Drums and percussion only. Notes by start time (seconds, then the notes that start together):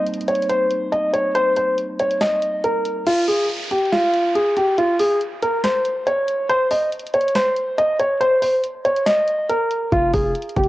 0.07 closed hi-hat
0.14 closed hi-hat
0.21 closed hi-hat
0.28 closed hi-hat
0.35 closed hi-hat
0.42 closed hi-hat
0.49 closed hi-hat
0.71 closed hi-hat
0.93 closed hi-hat
1.14 closed hi-hat
1.35 closed hi-hat
1.56 closed hi-hat
1.78 closed hi-hat
1.99 closed hi-hat
2.11 closed hi-hat
2.21 snare, closed hi-hat
2.42 closed hi-hat
2.64 closed hi-hat
2.85 closed hi-hat
3.07 closed hi-hat, crash
3.28 open hi-hat
3.49 closed hi-hat
3.57 closed hi-hat
3.64 closed hi-hat
3.71 closed hi-hat
3.78 closed hi-hat
3.85 closed hi-hat
3.92 snare, closed hi-hat
4.14 closed hi-hat
4.35 closed hi-hat
4.57 closed hi-hat
4.78 closed hi-hat
4.99 open hi-hat
5.21 closed hi-hat
5.42 closed hi-hat
5.64 snare, closed hi-hat
5.85 closed hi-hat
6.07 closed hi-hat
6.28 closed hi-hat
6.50 closed hi-hat
6.71 open hi-hat
6.92 closed hi-hat
6.99 closed hi-hat
7.07 closed hi-hat
7.14 closed hi-hat
7.21 closed hi-hat
7.28 closed hi-hat
7.35 snare, closed hi-hat
7.56 closed hi-hat
7.78 closed hi-hat
7.99 closed hi-hat
8.21 closed hi-hat
8.42 open hi-hat
8.64 closed hi-hat
8.85 closed hi-hat
8.96 closed hi-hat
9.07 snare, closed hi-hat
9.28 closed hi-hat
9.50 closed hi-hat
9.71 closed hi-hat
9.92 kick, closed hi-hat
10.14 kick, open hi-hat
10.35 closed hi-hat
10.42 closed hi-hat
10.49 closed hi-hat
10.56 kick, closed hi-hat
10.64 closed hi-hat